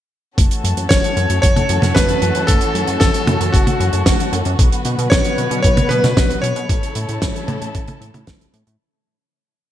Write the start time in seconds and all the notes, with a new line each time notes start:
0.38 F#1 E3 A3 C#4 F#4 A4, kick, closed hi-hat
0.51 closed hi-hat
0.64 F#2, closed hi-hat
0.77 F#2, closed hi-hat
0.89 F#1 C#5, kick, snare, closed hi-hat
1.04 closed hi-hat
1.17 F#2, closed hi-hat
1.30 F#2, closed hi-hat
1.42 F#1 C#5, kick, closed hi-hat
1.56 closed hi-hat, high tom
1.69 F#2, closed hi-hat
1.82 F#2, snare, closed hi-hat, high tom
1.95 F#1 B4, kick, snare, closed hi-hat
2.09 closed hi-hat
2.22 F#2, closed hi-hat
2.35 F#2, closed hi-hat
2.47 F#1 A4, kick, closed hi-hat
2.61 closed hi-hat
2.75 F#2, closed hi-hat
2.88 F#2, closed hi-hat
3.00 F#1 A4, kick, snare, closed hi-hat
3.14 closed hi-hat
3.27 F#2, closed hi-hat, high tom
3.41 F#2, closed hi-hat
3.52 F#1 F#4, kick, closed hi-hat
3.67 closed hi-hat, high tom
3.80 F#2, closed hi-hat
3.93 F#2, closed hi-hat
4.06 F#1, kick, snare, closed hi-hat
4.20 closed hi-hat
4.33 F#2, closed hi-hat
4.45 F#2, closed hi-hat
4.59 B1 D3 F#3 B3 B4, kick, closed hi-hat
4.72 closed hi-hat
4.85 B2, closed hi-hat
4.98 B2, closed hi-hat
5.10 B1 C#5, kick, snare, closed hi-hat
5.24 closed hi-hat
5.38 B2, closed hi-hat
5.51 B2, closed hi-hat
5.62 B1 C#5, kick, closed hi-hat
5.77 closed hi-hat, high tom
5.89 B2 B4, closed hi-hat
6.04 B2, snare, closed hi-hat, high tom
6.17 B1, kick, snare, closed hi-hat
6.30 closed hi-hat
6.42 B2 C#5, closed hi-hat
6.56 B2, closed hi-hat
6.69 A1 C#3 E3 A3 E4 A4, kick, closed hi-hat
6.83 closed hi-hat
6.95 A2, closed hi-hat
7.09 A2, closed hi-hat
7.22 A1, kick, snare, closed hi-hat
7.36 closed hi-hat
7.48 A2, closed hi-hat, high tom
7.62 A2, closed hi-hat
7.75 A1, kick, closed hi-hat
7.88 closed hi-hat, high tom
8.01 A2, closed hi-hat
8.14 A2, closed hi-hat, high tom
8.27 A1, kick, snare, closed hi-hat
8.41 closed hi-hat
8.54 A2, closed hi-hat
8.67 A2, closed hi-hat